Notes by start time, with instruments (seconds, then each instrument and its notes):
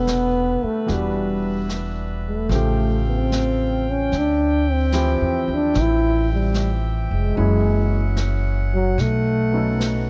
Already playing: upright bass E1, grand piano C3 G3 A3 B3 D4 E4, trombone B3, saxophone section A4 B4
0.07 snare, hi-hat pedal
0.63 trombone A3, muted upright bass stroke
0.86 upright bass E1, grand piano E3 G3 B3 D4 F#4, brush sweep, snare
0.90 trombone G3, saxophone section D4 E5
1.69 snare, hi-hat pedal
2.29 trombone A3
2.49 upright bass A1, grand piano F3 A3 C5, saxophone section A4 F5 G5, brush sweep, snare
2.54 grand piano C#3 G4
3.09 trombone C4
3.32 snare, hi-hat pedal
3.91 trombone C#4
4.12 upright bass D2, saxophone section C4 E5, brush sweep, snare
4.18 trombone D4
4.71 trombone C4
4.92 grand piano E3 F3 C4 E4 G4, snare, hi-hat pedal
5.21 upright bass E2
5.48 upright bass D#2
5.54 trombone D4
5.74 upright bass A1, brush sweep, snare
5.81 trombone E4
6.33 trombone G3
6.54 snare, hi-hat pedal
7.11 upright bass F1, trombone G#3
7.35 upright bass F#1, grand piano E3 F#3 C#4 E4, saxophone section C#4 F#5, brush sweep
7.40 grand piano G#4
8.17 snare, hi-hat pedal
8.74 trombone F#3
8.98 upright bass B1, trombone A3, saxophone section B3 D#5, brush sweep, snare
9.52 grand piano F#3 B3 C#4 D#4
9.57 grand piano A4
9.79 grand piano B4, snare, hi-hat pedal